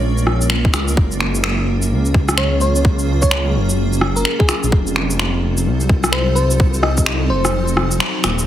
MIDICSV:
0, 0, Header, 1, 5, 480
1, 0, Start_track
1, 0, Tempo, 468750
1, 996, Time_signature, 4, 2, 24, 8
1, 8670, End_track
2, 0, Start_track
2, 0, Title_t, "FM electric piano"
2, 0, Program_c, 0, 5
2, 0, Note_on_c, 0, 73, 89
2, 479, Note_off_c, 0, 73, 0
2, 2433, Note_on_c, 0, 73, 93
2, 2656, Note_off_c, 0, 73, 0
2, 2675, Note_on_c, 0, 73, 91
2, 2931, Note_off_c, 0, 73, 0
2, 3296, Note_on_c, 0, 73, 96
2, 3780, Note_off_c, 0, 73, 0
2, 4262, Note_on_c, 0, 70, 92
2, 4474, Note_off_c, 0, 70, 0
2, 4497, Note_on_c, 0, 68, 92
2, 4833, Note_off_c, 0, 68, 0
2, 6269, Note_on_c, 0, 72, 93
2, 6495, Note_off_c, 0, 72, 0
2, 6506, Note_on_c, 0, 72, 94
2, 6766, Note_off_c, 0, 72, 0
2, 6990, Note_on_c, 0, 75, 94
2, 7248, Note_off_c, 0, 75, 0
2, 7472, Note_on_c, 0, 72, 99
2, 8158, Note_off_c, 0, 72, 0
2, 8670, End_track
3, 0, Start_track
3, 0, Title_t, "Ambient pad"
3, 0, Program_c, 1, 92
3, 0, Note_on_c, 1, 56, 81
3, 0, Note_on_c, 1, 58, 75
3, 0, Note_on_c, 1, 61, 76
3, 0, Note_on_c, 1, 65, 75
3, 0, Note_on_c, 1, 70, 91
3, 958, Note_off_c, 1, 61, 0
3, 959, Note_off_c, 1, 56, 0
3, 959, Note_off_c, 1, 70, 0
3, 995, Note_on_c, 1, 54, 84
3, 997, Note_on_c, 1, 68, 93
3, 999, Note_on_c, 1, 61, 76
3, 4798, Note_off_c, 1, 58, 0
3, 4798, Note_off_c, 1, 68, 0
3, 4800, Note_off_c, 1, 61, 0
3, 4800, Note_off_c, 1, 65, 0
3, 4827, Note_on_c, 1, 69, 91
3, 4828, Note_on_c, 1, 60, 81
3, 4829, Note_on_c, 1, 65, 81
3, 4831, Note_on_c, 1, 63, 75
3, 6734, Note_off_c, 1, 65, 0
3, 6762, Note_on_c, 1, 66, 78
3, 8633, Note_off_c, 1, 69, 0
3, 8634, Note_off_c, 1, 60, 0
3, 8635, Note_off_c, 1, 54, 0
3, 8636, Note_off_c, 1, 63, 0
3, 8660, Note_off_c, 1, 66, 0
3, 8670, End_track
4, 0, Start_track
4, 0, Title_t, "Detuned saw bass"
4, 0, Program_c, 2, 39
4, 0, Note_on_c, 2, 34, 97
4, 664, Note_on_c, 2, 32, 95
4, 679, Note_off_c, 2, 34, 0
4, 749, Note_off_c, 2, 32, 0
4, 754, Note_on_c, 2, 37, 97
4, 981, Note_off_c, 2, 37, 0
4, 996, Note_on_c, 2, 30, 96
4, 1956, Note_on_c, 2, 37, 97
4, 1972, Note_off_c, 2, 30, 0
4, 3644, Note_on_c, 2, 30, 100
4, 3660, Note_off_c, 2, 37, 0
4, 4349, Note_off_c, 2, 30, 0
4, 4747, Note_on_c, 2, 34, 103
4, 4831, Note_off_c, 2, 34, 0
4, 4840, Note_on_c, 2, 29, 92
4, 5801, Note_on_c, 2, 36, 94
4, 5816, Note_off_c, 2, 29, 0
4, 7475, Note_on_c, 2, 29, 100
4, 7490, Note_off_c, 2, 36, 0
4, 8184, Note_off_c, 2, 29, 0
4, 8444, Note_on_c, 2, 27, 99
4, 8666, Note_off_c, 2, 27, 0
4, 8670, End_track
5, 0, Start_track
5, 0, Title_t, "Drums"
5, 181, Note_on_c, 9, 82, 31
5, 274, Note_on_c, 9, 37, 61
5, 283, Note_off_c, 9, 82, 0
5, 376, Note_off_c, 9, 37, 0
5, 424, Note_on_c, 9, 82, 56
5, 510, Note_on_c, 9, 26, 106
5, 526, Note_off_c, 9, 82, 0
5, 612, Note_off_c, 9, 26, 0
5, 664, Note_on_c, 9, 36, 106
5, 754, Note_on_c, 9, 26, 63
5, 754, Note_on_c, 9, 37, 51
5, 754, Note_on_c, 9, 82, 45
5, 767, Note_off_c, 9, 36, 0
5, 856, Note_off_c, 9, 26, 0
5, 856, Note_off_c, 9, 37, 0
5, 856, Note_off_c, 9, 82, 0
5, 901, Note_on_c, 9, 82, 52
5, 996, Note_on_c, 9, 36, 121
5, 1004, Note_off_c, 9, 82, 0
5, 1098, Note_off_c, 9, 36, 0
5, 1143, Note_on_c, 9, 82, 29
5, 1234, Note_on_c, 9, 26, 59
5, 1245, Note_off_c, 9, 82, 0
5, 1336, Note_off_c, 9, 26, 0
5, 1380, Note_on_c, 9, 82, 51
5, 1471, Note_on_c, 9, 26, 110
5, 1483, Note_off_c, 9, 82, 0
5, 1574, Note_off_c, 9, 26, 0
5, 1865, Note_on_c, 9, 82, 54
5, 1967, Note_off_c, 9, 82, 0
5, 2103, Note_on_c, 9, 82, 31
5, 2196, Note_on_c, 9, 36, 107
5, 2205, Note_off_c, 9, 82, 0
5, 2298, Note_off_c, 9, 36, 0
5, 2340, Note_on_c, 9, 37, 65
5, 2340, Note_on_c, 9, 82, 55
5, 2433, Note_on_c, 9, 26, 94
5, 2443, Note_off_c, 9, 37, 0
5, 2443, Note_off_c, 9, 82, 0
5, 2535, Note_off_c, 9, 26, 0
5, 2670, Note_on_c, 9, 82, 44
5, 2772, Note_off_c, 9, 82, 0
5, 2822, Note_on_c, 9, 82, 52
5, 2916, Note_on_c, 9, 36, 115
5, 2925, Note_off_c, 9, 82, 0
5, 3019, Note_off_c, 9, 36, 0
5, 3061, Note_on_c, 9, 82, 30
5, 3163, Note_off_c, 9, 82, 0
5, 3299, Note_on_c, 9, 82, 52
5, 3304, Note_on_c, 9, 36, 59
5, 3392, Note_on_c, 9, 26, 106
5, 3401, Note_off_c, 9, 82, 0
5, 3407, Note_off_c, 9, 36, 0
5, 3495, Note_off_c, 9, 26, 0
5, 3783, Note_on_c, 9, 82, 51
5, 3885, Note_off_c, 9, 82, 0
5, 4023, Note_on_c, 9, 82, 31
5, 4110, Note_on_c, 9, 37, 67
5, 4125, Note_off_c, 9, 82, 0
5, 4212, Note_off_c, 9, 37, 0
5, 4265, Note_on_c, 9, 82, 55
5, 4353, Note_on_c, 9, 26, 92
5, 4367, Note_off_c, 9, 82, 0
5, 4456, Note_off_c, 9, 26, 0
5, 4505, Note_on_c, 9, 36, 107
5, 4595, Note_on_c, 9, 26, 60
5, 4595, Note_on_c, 9, 37, 52
5, 4595, Note_on_c, 9, 82, 44
5, 4607, Note_off_c, 9, 36, 0
5, 4697, Note_off_c, 9, 26, 0
5, 4697, Note_off_c, 9, 37, 0
5, 4697, Note_off_c, 9, 82, 0
5, 4745, Note_on_c, 9, 82, 51
5, 4836, Note_on_c, 9, 36, 112
5, 4847, Note_off_c, 9, 82, 0
5, 4939, Note_off_c, 9, 36, 0
5, 4986, Note_on_c, 9, 82, 31
5, 5079, Note_on_c, 9, 26, 59
5, 5089, Note_off_c, 9, 82, 0
5, 5181, Note_off_c, 9, 26, 0
5, 5227, Note_on_c, 9, 82, 55
5, 5319, Note_on_c, 9, 26, 102
5, 5329, Note_off_c, 9, 82, 0
5, 5422, Note_off_c, 9, 26, 0
5, 5707, Note_on_c, 9, 82, 56
5, 5809, Note_off_c, 9, 82, 0
5, 5942, Note_on_c, 9, 82, 30
5, 6036, Note_on_c, 9, 36, 98
5, 6045, Note_off_c, 9, 82, 0
5, 6138, Note_off_c, 9, 36, 0
5, 6182, Note_on_c, 9, 37, 69
5, 6182, Note_on_c, 9, 82, 56
5, 6274, Note_on_c, 9, 26, 96
5, 6285, Note_off_c, 9, 37, 0
5, 6285, Note_off_c, 9, 82, 0
5, 6376, Note_off_c, 9, 26, 0
5, 6515, Note_on_c, 9, 82, 45
5, 6617, Note_off_c, 9, 82, 0
5, 6662, Note_on_c, 9, 82, 56
5, 6757, Note_on_c, 9, 36, 116
5, 6764, Note_off_c, 9, 82, 0
5, 6859, Note_off_c, 9, 36, 0
5, 6901, Note_on_c, 9, 82, 30
5, 6995, Note_on_c, 9, 37, 66
5, 7003, Note_off_c, 9, 82, 0
5, 7098, Note_off_c, 9, 37, 0
5, 7142, Note_on_c, 9, 82, 59
5, 7144, Note_on_c, 9, 36, 57
5, 7233, Note_on_c, 9, 26, 108
5, 7244, Note_off_c, 9, 82, 0
5, 7247, Note_off_c, 9, 36, 0
5, 7336, Note_off_c, 9, 26, 0
5, 7626, Note_on_c, 9, 37, 64
5, 7626, Note_on_c, 9, 82, 56
5, 7728, Note_off_c, 9, 37, 0
5, 7728, Note_off_c, 9, 82, 0
5, 7862, Note_on_c, 9, 82, 32
5, 7955, Note_on_c, 9, 37, 72
5, 7964, Note_off_c, 9, 82, 0
5, 8058, Note_off_c, 9, 37, 0
5, 8103, Note_on_c, 9, 82, 59
5, 8195, Note_on_c, 9, 26, 92
5, 8206, Note_off_c, 9, 82, 0
5, 8298, Note_off_c, 9, 26, 0
5, 8436, Note_on_c, 9, 26, 59
5, 8436, Note_on_c, 9, 37, 57
5, 8436, Note_on_c, 9, 82, 46
5, 8539, Note_off_c, 9, 26, 0
5, 8539, Note_off_c, 9, 37, 0
5, 8539, Note_off_c, 9, 82, 0
5, 8588, Note_on_c, 9, 82, 59
5, 8670, Note_off_c, 9, 82, 0
5, 8670, End_track
0, 0, End_of_file